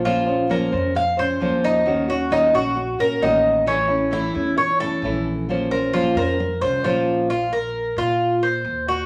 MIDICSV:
0, 0, Header, 1, 5, 480
1, 0, Start_track
1, 0, Key_signature, -5, "minor"
1, 0, Tempo, 453172
1, 47, Time_signature, 4, 2, 24, 8
1, 9594, End_track
2, 0, Start_track
2, 0, Title_t, "Cuban tres"
2, 0, Program_c, 0, 25
2, 55, Note_on_c, 0, 65, 80
2, 517, Note_off_c, 0, 65, 0
2, 538, Note_on_c, 0, 70, 75
2, 999, Note_off_c, 0, 70, 0
2, 1020, Note_on_c, 0, 77, 78
2, 1247, Note_off_c, 0, 77, 0
2, 1261, Note_on_c, 0, 72, 84
2, 1721, Note_off_c, 0, 72, 0
2, 1742, Note_on_c, 0, 63, 96
2, 2201, Note_off_c, 0, 63, 0
2, 2222, Note_on_c, 0, 66, 83
2, 2448, Note_off_c, 0, 66, 0
2, 2457, Note_on_c, 0, 63, 94
2, 2686, Note_off_c, 0, 63, 0
2, 2697, Note_on_c, 0, 66, 80
2, 3159, Note_off_c, 0, 66, 0
2, 3180, Note_on_c, 0, 70, 89
2, 3407, Note_off_c, 0, 70, 0
2, 3416, Note_on_c, 0, 63, 82
2, 3878, Note_off_c, 0, 63, 0
2, 3891, Note_on_c, 0, 61, 80
2, 4355, Note_off_c, 0, 61, 0
2, 4371, Note_on_c, 0, 64, 80
2, 4835, Note_off_c, 0, 64, 0
2, 4846, Note_on_c, 0, 73, 76
2, 5080, Note_off_c, 0, 73, 0
2, 5087, Note_on_c, 0, 69, 88
2, 5552, Note_off_c, 0, 69, 0
2, 6050, Note_on_c, 0, 70, 80
2, 6281, Note_off_c, 0, 70, 0
2, 6286, Note_on_c, 0, 65, 85
2, 6519, Note_off_c, 0, 65, 0
2, 6535, Note_on_c, 0, 70, 84
2, 6996, Note_off_c, 0, 70, 0
2, 7007, Note_on_c, 0, 72, 82
2, 7239, Note_off_c, 0, 72, 0
2, 7249, Note_on_c, 0, 65, 75
2, 7713, Note_off_c, 0, 65, 0
2, 7732, Note_on_c, 0, 65, 82
2, 7961, Note_off_c, 0, 65, 0
2, 7973, Note_on_c, 0, 70, 77
2, 8435, Note_off_c, 0, 70, 0
2, 8453, Note_on_c, 0, 65, 85
2, 8915, Note_off_c, 0, 65, 0
2, 8927, Note_on_c, 0, 72, 81
2, 9392, Note_off_c, 0, 72, 0
2, 9411, Note_on_c, 0, 66, 82
2, 9594, Note_off_c, 0, 66, 0
2, 9594, End_track
3, 0, Start_track
3, 0, Title_t, "Nylon-string guitar"
3, 0, Program_c, 1, 24
3, 49, Note_on_c, 1, 53, 70
3, 59, Note_on_c, 1, 61, 79
3, 60, Note_on_c, 1, 58, 86
3, 66, Note_on_c, 1, 65, 82
3, 69, Note_on_c, 1, 72, 87
3, 265, Note_off_c, 1, 72, 0
3, 278, Note_on_c, 1, 72, 51
3, 279, Note_off_c, 1, 53, 0
3, 281, Note_off_c, 1, 65, 0
3, 284, Note_off_c, 1, 58, 0
3, 284, Note_off_c, 1, 61, 0
3, 294, Note_on_c, 1, 65, 47
3, 303, Note_on_c, 1, 61, 42
3, 513, Note_off_c, 1, 72, 0
3, 514, Note_off_c, 1, 61, 0
3, 521, Note_off_c, 1, 65, 0
3, 522, Note_on_c, 1, 53, 75
3, 526, Note_on_c, 1, 58, 87
3, 526, Note_on_c, 1, 61, 80
3, 536, Note_on_c, 1, 65, 91
3, 539, Note_on_c, 1, 72, 87
3, 747, Note_off_c, 1, 72, 0
3, 755, Note_off_c, 1, 53, 0
3, 758, Note_off_c, 1, 58, 0
3, 758, Note_off_c, 1, 61, 0
3, 758, Note_off_c, 1, 65, 0
3, 760, Note_on_c, 1, 72, 56
3, 771, Note_on_c, 1, 65, 51
3, 780, Note_on_c, 1, 61, 49
3, 995, Note_off_c, 1, 72, 0
3, 999, Note_off_c, 1, 61, 0
3, 1000, Note_off_c, 1, 65, 0
3, 1240, Note_on_c, 1, 72, 55
3, 1254, Note_on_c, 1, 65, 54
3, 1258, Note_on_c, 1, 61, 47
3, 1475, Note_off_c, 1, 72, 0
3, 1482, Note_off_c, 1, 65, 0
3, 1484, Note_off_c, 1, 61, 0
3, 1493, Note_on_c, 1, 53, 69
3, 1495, Note_on_c, 1, 58, 82
3, 1497, Note_on_c, 1, 61, 84
3, 1502, Note_on_c, 1, 65, 77
3, 1508, Note_on_c, 1, 72, 92
3, 1956, Note_off_c, 1, 58, 0
3, 1961, Note_off_c, 1, 53, 0
3, 1964, Note_off_c, 1, 61, 0
3, 1966, Note_off_c, 1, 65, 0
3, 1966, Note_on_c, 1, 51, 84
3, 1968, Note_on_c, 1, 58, 85
3, 1969, Note_off_c, 1, 72, 0
3, 1977, Note_on_c, 1, 61, 78
3, 1980, Note_on_c, 1, 66, 90
3, 2192, Note_off_c, 1, 66, 0
3, 2198, Note_off_c, 1, 51, 0
3, 2199, Note_off_c, 1, 58, 0
3, 2204, Note_off_c, 1, 61, 0
3, 2204, Note_on_c, 1, 66, 52
3, 2216, Note_on_c, 1, 61, 49
3, 2218, Note_on_c, 1, 58, 43
3, 2437, Note_off_c, 1, 58, 0
3, 2437, Note_off_c, 1, 66, 0
3, 2443, Note_off_c, 1, 61, 0
3, 2443, Note_on_c, 1, 51, 83
3, 2450, Note_on_c, 1, 58, 78
3, 2455, Note_on_c, 1, 61, 85
3, 2461, Note_on_c, 1, 66, 90
3, 2671, Note_off_c, 1, 66, 0
3, 2676, Note_off_c, 1, 51, 0
3, 2680, Note_off_c, 1, 58, 0
3, 2683, Note_off_c, 1, 61, 0
3, 2684, Note_on_c, 1, 66, 58
3, 2695, Note_on_c, 1, 61, 53
3, 2702, Note_on_c, 1, 58, 42
3, 2914, Note_off_c, 1, 58, 0
3, 2917, Note_off_c, 1, 66, 0
3, 2918, Note_off_c, 1, 61, 0
3, 3164, Note_on_c, 1, 66, 55
3, 3173, Note_on_c, 1, 61, 48
3, 3182, Note_on_c, 1, 58, 45
3, 3397, Note_off_c, 1, 66, 0
3, 3399, Note_off_c, 1, 58, 0
3, 3401, Note_off_c, 1, 61, 0
3, 3408, Note_on_c, 1, 51, 74
3, 3412, Note_on_c, 1, 58, 74
3, 3418, Note_on_c, 1, 61, 84
3, 3423, Note_on_c, 1, 66, 89
3, 3876, Note_off_c, 1, 51, 0
3, 3878, Note_off_c, 1, 61, 0
3, 3880, Note_on_c, 1, 52, 77
3, 3881, Note_off_c, 1, 58, 0
3, 3886, Note_off_c, 1, 66, 0
3, 3887, Note_on_c, 1, 57, 84
3, 3891, Note_on_c, 1, 61, 80
3, 3898, Note_on_c, 1, 64, 79
3, 4100, Note_off_c, 1, 64, 0
3, 4113, Note_on_c, 1, 64, 54
3, 4115, Note_off_c, 1, 52, 0
3, 4117, Note_off_c, 1, 61, 0
3, 4118, Note_off_c, 1, 57, 0
3, 4130, Note_on_c, 1, 61, 51
3, 4133, Note_on_c, 1, 57, 45
3, 4343, Note_off_c, 1, 57, 0
3, 4348, Note_off_c, 1, 61, 0
3, 4350, Note_on_c, 1, 52, 82
3, 4351, Note_off_c, 1, 64, 0
3, 4356, Note_on_c, 1, 57, 80
3, 4361, Note_on_c, 1, 61, 84
3, 4370, Note_on_c, 1, 64, 91
3, 4584, Note_off_c, 1, 64, 0
3, 4590, Note_off_c, 1, 52, 0
3, 4592, Note_off_c, 1, 57, 0
3, 4595, Note_off_c, 1, 61, 0
3, 4597, Note_on_c, 1, 64, 58
3, 4614, Note_on_c, 1, 61, 47
3, 4617, Note_on_c, 1, 57, 48
3, 4833, Note_off_c, 1, 64, 0
3, 4837, Note_off_c, 1, 57, 0
3, 4841, Note_off_c, 1, 61, 0
3, 5088, Note_on_c, 1, 64, 58
3, 5102, Note_on_c, 1, 61, 47
3, 5110, Note_on_c, 1, 57, 47
3, 5318, Note_off_c, 1, 64, 0
3, 5325, Note_off_c, 1, 61, 0
3, 5327, Note_off_c, 1, 57, 0
3, 5331, Note_on_c, 1, 52, 68
3, 5339, Note_on_c, 1, 57, 84
3, 5341, Note_on_c, 1, 61, 75
3, 5349, Note_on_c, 1, 64, 87
3, 5799, Note_off_c, 1, 52, 0
3, 5803, Note_off_c, 1, 57, 0
3, 5804, Note_off_c, 1, 61, 0
3, 5808, Note_off_c, 1, 64, 0
3, 5812, Note_on_c, 1, 53, 70
3, 5820, Note_on_c, 1, 58, 75
3, 5827, Note_on_c, 1, 61, 80
3, 5828, Note_on_c, 1, 65, 89
3, 5832, Note_on_c, 1, 72, 86
3, 6040, Note_off_c, 1, 53, 0
3, 6041, Note_off_c, 1, 72, 0
3, 6044, Note_off_c, 1, 58, 0
3, 6047, Note_off_c, 1, 61, 0
3, 6048, Note_off_c, 1, 65, 0
3, 6054, Note_on_c, 1, 72, 54
3, 6064, Note_on_c, 1, 65, 47
3, 6071, Note_on_c, 1, 61, 44
3, 6281, Note_off_c, 1, 72, 0
3, 6286, Note_off_c, 1, 65, 0
3, 6289, Note_off_c, 1, 61, 0
3, 6290, Note_on_c, 1, 53, 73
3, 6298, Note_on_c, 1, 58, 80
3, 6308, Note_on_c, 1, 61, 85
3, 6309, Note_on_c, 1, 65, 78
3, 6311, Note_on_c, 1, 72, 97
3, 6518, Note_off_c, 1, 53, 0
3, 6522, Note_off_c, 1, 58, 0
3, 6527, Note_off_c, 1, 61, 0
3, 6528, Note_off_c, 1, 65, 0
3, 6529, Note_off_c, 1, 72, 0
3, 6544, Note_on_c, 1, 72, 58
3, 6546, Note_on_c, 1, 65, 54
3, 6559, Note_on_c, 1, 61, 45
3, 6765, Note_off_c, 1, 72, 0
3, 6766, Note_off_c, 1, 61, 0
3, 6766, Note_off_c, 1, 65, 0
3, 7008, Note_on_c, 1, 72, 57
3, 7022, Note_on_c, 1, 65, 50
3, 7031, Note_on_c, 1, 61, 45
3, 7237, Note_off_c, 1, 72, 0
3, 7242, Note_off_c, 1, 61, 0
3, 7244, Note_off_c, 1, 65, 0
3, 7246, Note_on_c, 1, 53, 78
3, 7251, Note_on_c, 1, 58, 85
3, 7255, Note_on_c, 1, 61, 79
3, 7261, Note_on_c, 1, 72, 85
3, 7262, Note_on_c, 1, 65, 81
3, 7716, Note_off_c, 1, 53, 0
3, 7718, Note_off_c, 1, 58, 0
3, 7720, Note_off_c, 1, 61, 0
3, 7723, Note_off_c, 1, 72, 0
3, 7724, Note_off_c, 1, 65, 0
3, 9594, End_track
4, 0, Start_track
4, 0, Title_t, "Upright bass"
4, 0, Program_c, 2, 32
4, 0, Note_on_c, 2, 34, 94
4, 701, Note_off_c, 2, 34, 0
4, 767, Note_on_c, 2, 41, 99
4, 1446, Note_off_c, 2, 41, 0
4, 1487, Note_on_c, 2, 39, 99
4, 2622, Note_off_c, 2, 39, 0
4, 2690, Note_on_c, 2, 34, 100
4, 3136, Note_off_c, 2, 34, 0
4, 3172, Note_on_c, 2, 34, 74
4, 3394, Note_off_c, 2, 34, 0
4, 3404, Note_on_c, 2, 33, 98
4, 4540, Note_off_c, 2, 33, 0
4, 4605, Note_on_c, 2, 40, 102
4, 5284, Note_off_c, 2, 40, 0
4, 5317, Note_on_c, 2, 34, 100
4, 6455, Note_off_c, 2, 34, 0
4, 6514, Note_on_c, 2, 41, 102
4, 6966, Note_off_c, 2, 41, 0
4, 7002, Note_on_c, 2, 36, 72
4, 7227, Note_off_c, 2, 36, 0
4, 7242, Note_on_c, 2, 34, 92
4, 8377, Note_off_c, 2, 34, 0
4, 8436, Note_on_c, 2, 46, 98
4, 9118, Note_off_c, 2, 46, 0
4, 9157, Note_on_c, 2, 39, 100
4, 9594, Note_off_c, 2, 39, 0
4, 9594, End_track
5, 0, Start_track
5, 0, Title_t, "Muted nylon-string guitar strokes"
5, 1004, Note_on_c, 9, 29, 70
5, 1110, Note_off_c, 9, 29, 0
5, 2924, Note_on_c, 9, 29, 70
5, 3030, Note_off_c, 9, 29, 0
5, 4850, Note_on_c, 9, 29, 75
5, 4956, Note_off_c, 9, 29, 0
5, 6772, Note_on_c, 9, 29, 63
5, 6878, Note_off_c, 9, 29, 0
5, 9594, End_track
0, 0, End_of_file